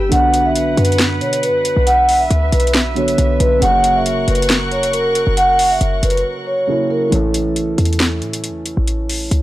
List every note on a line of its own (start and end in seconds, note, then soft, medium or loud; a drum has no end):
0.00 0.11 G1 loud
0.09 0.75 B1 loud
0.09 2.91 D3 medium
0.09 2.92 F#3 medium
0.09 2.92 B3 medium
0.09 2.93 D4 medium
0.09 3.58 B4 medium
0.09 1.85 F#5 medium
0.09 0.43 F#5 loud
0.09 closed hi-hat medium
0.14 2.93 F#4 medium
0.34 closed hi-hat medium
0.45 0.76 E5 medium
0.55 closed hi-hat medium
0.77 1.23 F#2 loud
0.77 0.94 B4 medium
0.77 closed hi-hat medium
0.85 closed hi-hat medium
0.92 closed hi-hat medium
0.99 snare loud
0.99 closed hi-hat medium
1.21 1.50 B2 loud
1.21 1.38 C#5 medium
1.21 closed hi-hat soft
1.33 closed hi-hat medium
1.43 1.84 B4 medium
1.43 closed hi-hat medium
1.49 1.75 F#2 loud
1.65 closed hi-hat medium
1.76 2.28 B1 loud
1.87 3.60 E5 medium
1.87 2.18 F#5 loud
1.87 closed hi-hat medium
2.09 open hi-hat medium
2.20 2.51 E5 medium
2.31 2.52 D2 loud
2.31 closed hi-hat medium
2.52 3.16 B1 loud
2.52 2.69 B4 medium
2.52 closed hi-hat medium
2.60 closed hi-hat medium
2.67 closed hi-hat medium
2.74 snare loud
2.74 closed hi-hat medium
2.95 3.61 D3 soft
2.95 3.59 F#3 soft
2.95 3.62 B3 medium
2.95 3.62 D4 soft
2.95 3.63 F#4 medium
2.95 3.38 C#5 medium
2.95 closed hi-hat soft
3.08 closed hi-hat medium
3.18 3.39 B1 loud
3.18 closed hi-hat medium
3.40 3.61 B1 loud
3.40 3.57 B4 medium
3.40 closed hi-hat medium
3.60 4.25 F#1 loud
3.60 6.63 C#3 medium
3.60 6.64 F#3 medium
3.60 6.65 A#3 medium
3.60 6.65 C#4 medium
3.60 7.09 A#4 medium
3.60 7.09 F#5 medium
3.60 3.94 F#5 loud
3.60 7.09 C#6 medium
3.60 closed hi-hat medium
3.64 6.66 F#4 medium
3.84 closed hi-hat medium
3.96 4.26 E5 medium
4.06 closed hi-hat medium
4.28 5.23 F#1 loud
4.28 4.44 B4 medium
4.28 closed hi-hat medium
4.35 closed hi-hat medium
4.42 closed hi-hat medium
4.50 snare loud
4.50 closed hi-hat medium
4.71 4.88 C#5 medium
4.71 closed hi-hat soft
4.83 closed hi-hat medium
4.93 5.35 A#4 medium
4.93 closed hi-hat medium
5.15 closed hi-hat medium
5.27 5.79 F#1 loud
5.37 5.69 F#5 loud
5.37 closed hi-hat medium
5.59 open hi-hat medium
5.71 6.01 E5 medium
5.81 6.02 F#1 loud
5.81 closed hi-hat medium
6.03 6.24 F#1 loud
6.03 6.20 B4 medium
6.03 closed hi-hat medium
6.10 closed hi-hat medium
6.17 closed hi-hat soft
6.47 6.88 C#5 medium
6.67 7.12 C#3 soft
6.67 7.12 F#3 soft
6.67 7.12 A#3 soft
6.67 7.11 C#4 soft
6.67 7.12 E4 medium
6.90 7.07 A#4 medium
7.10 7.75 A1 loud
7.10 9.42 E3 medium
7.10 9.42 A3 medium
7.10 9.42 C#4 medium
7.10 9.42 E4 medium
7.10 closed hi-hat medium
7.15 9.42 A4 medium
7.34 closed hi-hat medium
7.56 closed hi-hat medium
7.78 8.23 E2 loud
7.78 closed hi-hat medium
7.85 closed hi-hat medium
7.93 closed hi-hat medium
8.00 snare loud
8.00 closed hi-hat medium
8.22 8.51 A2 loud
8.22 closed hi-hat soft
8.33 closed hi-hat medium
8.44 closed hi-hat medium
8.49 8.76 E2 loud
8.66 closed hi-hat medium
8.77 9.29 A1 loud
8.88 closed hi-hat medium
9.09 open hi-hat medium
9.31 9.42 C#2 loud
9.31 closed hi-hat medium